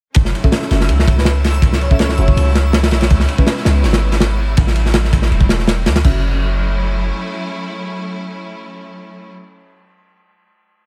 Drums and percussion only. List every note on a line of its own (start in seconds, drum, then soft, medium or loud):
0.14 kick loud
0.14 ride medium
0.25 snare medium
0.35 ride medium
0.44 kick medium
0.52 snare loud
0.52 ride medium
0.62 snare soft
0.71 snare soft
0.71 ride medium
0.80 snare medium
0.89 ride medium
0.99 snare medium
1.08 kick loud
1.08 ride medium
1.18 snare medium
1.25 snare loud
1.25 ride medium
1.44 snare medium
1.44 ride medium
1.54 ride soft
1.62 kick loud
1.62 ride medium
1.73 snare medium
1.81 ride medium
1.91 kick medium
1.99 snare loud
1.99 ride medium
2.09 snare medium
2.18 ride medium
2.28 kick medium
2.37 ride loud
2.55 snare medium
2.55 ride medium
2.73 snare loud
2.73 ride medium
2.83 snare loud
2.83 ride medium
2.91 snare loud
2.91 ride medium
3.01 snare loud
3.01 ride medium
3.10 kick loud
3.10 ride medium
3.20 snare medium
3.28 ride medium
3.38 kick loud
3.47 snare loud
3.47 ride loud
3.57 snare soft
3.65 snare loud
3.65 ride medium
3.84 snare medium
3.84 ride medium
3.93 snare loud
3.93 ride medium
4.12 snare medium
4.12 ride medium
4.20 snare loud
4.20 ride medium
4.57 kick loud
4.57 ride medium
4.67 snare medium
4.76 ride medium
4.86 snare soft
4.94 snare loud
4.94 ride loud
5.05 snare medium
5.13 kick loud
5.13 ride medium
5.22 snare medium
5.32 ride medium
5.41 kick medium
5.49 snare loud
5.49 ride medium
5.59 snare soft
5.68 snare loud
5.68 ride medium
5.86 snare loud
5.86 ride medium
5.96 snare loud
5.96 ride medium
6.04 kick loud
6.04 crash medium